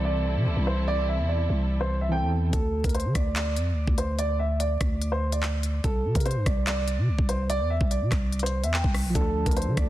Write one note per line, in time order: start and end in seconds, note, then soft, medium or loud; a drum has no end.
0.00 0.37 C2 loud
0.00 2.50 C3 medium
0.00 2.05 E3 medium
0.00 2.08 C4 medium
0.00 2.50 C4 medium
0.00 2.50 E4 medium
0.00 2.11 A4 medium
0.00 2.49 A4 medium
0.05 0.63 D5 medium
0.36 0.48 C3 loud
0.46 0.56 C2 loud
0.57 1.20 C2 loud
0.67 0.84 C5 medium
0.88 1.05 D5 loud
1.08 1.25 E5 medium
1.19 1.48 E2 loud
1.29 1.78 D5 medium
1.50 2.24 C2 loud
1.81 1.98 C5 medium
2.01 2.10 E5 medium
2.09 2.52 E3 soft
2.09 2.53 C4 soft
2.09 2.29 G5 medium
2.14 2.54 A4 soft
2.22 2.52 E2 loud
2.53 2.83 D2 loud
2.53 2.82 A4 loud
2.53 kick loud
2.53 closed hi-hat medium
2.84 3.06 D2 loud
2.84 2.93 A#4 medium
2.84 kick medium
2.84 closed hi-hat medium
2.89 closed hi-hat medium
2.94 3.11 C5 medium
2.94 closed hi-hat medium
3.00 closed hi-hat soft
3.05 3.15 D3 loud
3.15 3.58 D2 loud
3.15 3.32 D5 medium
3.15 kick loud
3.15 cross-stick medium
3.15 closed hi-hat medium
3.36 3.94 D5 medium
3.36 clap loud
3.36 closed hi-hat medium
3.56 3.74 F2 loud
3.56 closed hi-hat medium
3.72 3.87 D2 loud
3.88 4.77 D2 loud
3.88 kick medium
3.98 4.15 C5 medium
3.98 closed hi-hat medium
4.19 4.36 D5 loud
4.19 closed hi-hat medium
4.39 4.56 E5 medium
4.60 5.09 D5 medium
4.60 closed hi-hat medium
4.81 5.80 D2 loud
4.81 kick loud
4.81 cross-stick medium
4.81 closed hi-hat medium
5.01 closed hi-hat medium
5.12 5.29 C5 medium
5.32 5.81 D5 medium
5.32 closed hi-hat medium
5.43 clap loud
5.63 closed hi-hat medium
5.84 6.06 C2 loud
5.84 6.13 A4 loud
5.84 kick loud
5.84 closed hi-hat medium
6.05 6.15 C3 loud
6.15 6.37 C3 loud
6.15 6.24 A#4 medium
6.15 kick medium
6.15 closed hi-hat medium
6.20 closed hi-hat medium
6.25 6.42 C5 medium
6.25 closed hi-hat medium
6.31 closed hi-hat soft
6.36 6.46 G2 loud
6.46 6.99 C2 loud
6.46 6.63 D5 medium
6.46 kick medium
6.46 cross-stick medium
6.46 closed hi-hat medium
6.67 7.25 D5 loud
6.67 clap loud
6.67 closed hi-hat medium
6.88 closed hi-hat medium
6.98 7.10 C3 loud
7.08 7.18 C2 loud
7.19 7.62 C2 loud
7.19 kick loud
7.29 7.46 C5 medium
7.29 closed hi-hat medium
7.50 7.67 D5 loud
7.50 closed hi-hat medium
7.60 7.80 E2 loud
7.70 7.87 E5 medium
7.81 8.03 C2 loud
7.81 kick medium
7.91 8.40 D5 medium
7.91 closed hi-hat medium
8.01 8.11 C3 loud
8.12 8.65 C2 loud
8.12 kick loud
8.12 cross-stick medium
8.12 clap medium
8.12 closed hi-hat medium
8.32 closed hi-hat soft
8.39 8.60 C5 medium
8.39 closed hi-hat medium
8.46 closed hi-hat medium
8.63 8.83 E2 loud
8.63 8.72 E5 medium
8.63 closed hi-hat medium
8.74 8.91 G5 medium
8.74 clap loud
8.84 9.06 C2 loud
8.84 kick medium
8.94 cross-stick medium
8.94 open hi-hat medium
9.05 9.15 A#1 loud
9.10 9.89 F3 medium
9.15 9.45 D2 loud
9.15 9.89 D4 medium
9.15 9.44 A4 loud
9.15 kick loud
9.15 closed hi-hat medium
9.21 9.89 A4 medium
9.46 9.68 D2 loud
9.46 9.55 A#4 medium
9.46 kick medium
9.46 closed hi-hat medium
9.51 closed hi-hat medium
9.57 9.74 C5 medium
9.57 closed hi-hat medium
9.62 closed hi-hat soft
9.67 9.77 D3 loud
9.77 9.89 D2 loud
9.77 9.89 D5 medium
9.77 kick medium
9.77 cross-stick medium
9.77 closed hi-hat medium